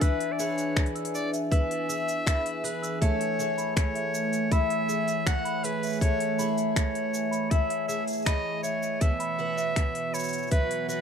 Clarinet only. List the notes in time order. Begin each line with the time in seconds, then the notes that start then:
0.01 B4
0.32 D5
0.39 C#5
1.14 D5
1.52 E5
2.64 B4
3.01 C#5
3.77 C#5
4.52 E5
5.27 F#5
5.64 B4
6.01 C#5
6.76 C#5
7.51 E5
7.88 E5
8.26 D#5
8.63 C#5
9.01 E5
10.14 C#5
10.51 B4
10.89 B4